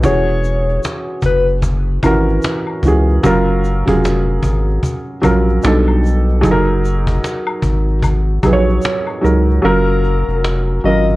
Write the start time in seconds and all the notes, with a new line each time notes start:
0.02 E1 E3 C#4 F#4 G#4 C#5, cajon bass, shaker
0.44 cajon slap, shaker
0.69 cajon slap
0.84 cajon slap, shaker
1.09 cajon slap
1.22 F#1 B4, cajon bass, shaker
1.49 cajon slap
1.62 cajon bass, shaker
2.03 G#1 E3 C#4 F#4 A#4, cajon bass, high woodblock, shaker
2.29 cajon slap
2.42 cajon slap, shaker
2.67 high woodblock
2.83 C#2 E3 C#4 F#4, cajon bass, shaker
2.88 G#4
3.10 cajon slap
3.23 F#1 F#3 C#4 F4 A#4, cajon bass, shaker
3.64 cajon slap, shaker
3.85 F1 F#3 C#4 F4 G#4, cajon bass
4.05 cajon slap, shaker
4.29 cajon slap
4.43 G#1, cajon bass, shaker
4.70 cajon slap
4.83 cajon bass, shaker
5.22 A#1 F#3 C#4 F4 A#4, cajon bass, high woodblock, shaker
5.49 cajon slap
5.63 B1 B2 G3 D4 D#4 A4, cajon slap, shaker
5.88 high woodblock
6.03 cajon slap, shaker
6.30 cajon slap
6.41 F#1 F#3 D#4 G#4 A4, cajon bass, shaker
6.51 A#4
6.68 cajon slap
6.84 cajon slap, shaker
7.07 cajon bass
7.24 cajon slap, shaker
7.47 cajon slap, high woodblock
7.62 G#1, cajon bass, shaker
7.89 cajon slap
8.02 cajon bass, high woodblock, shaker
8.29 cajon slap
8.43 A#1 F#3 D#4 G#4 B4, cajon bass, high woodblock, shaker
8.53 C#5
8.69 cajon slap
8.82 cajon slap, shaker
9.07 cajon slap, high woodblock
9.21 C#2 F#3 D#4 G#4 A#4, cajon slap
9.25 shaker
9.50 cajon slap
9.62 F#1 F#3 C#4 F4 A#4, cajon slap
10.04 cajon slap
10.28 F1, cajon slap
10.44 cajon slap
10.69 cajon slap
10.84 G#1 F#3 C#4 F4 A#4 D#5, cajon slap
11.09 cajon slap